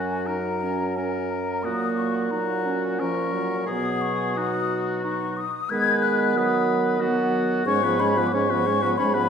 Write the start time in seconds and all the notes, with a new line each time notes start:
Already playing: F#2 F#3 C#4 F#4 G#5
0.26 D#4 A#4 A#5
0.63 C#4
0.97 C#4 A#4 G#5
1.30 A#5
1.63 A#2 F#3 A#3 F#4 D#6
1.97 C#6
2.31 F#3 D#4 F#4 A#5
2.66 C#4
2.99 F3 C#4 A#4 C#6
3.33 F#3
3.66 B2 F#3 B3 G#4 D#6
4.01 C#6
4.37 D#4 F#4 D#6
5.04 D#4 C#6
5.37 D#6
5.70 D#3 G#3 B3 B4 G#6
6.02 F#6
6.36 F#3 B4 D#6
7.00 F#3 B3 F#4
7.65 G#2 G#3 C#4 C#5 C#6
7.82 F3 B3 B4
7.99 G#3 C#4 C#5 B5
8.16 F3 B3 B4
8.27 D6
8.32 G#2 G#3 C#4 C#5 C#6
8.50 F3 B3 B4
8.65 G#3 C#4 C#5
8.82 F3 B3 B4
8.98 G#2 G#3 C#4 C#5 B5
9.14 F3 B3 B4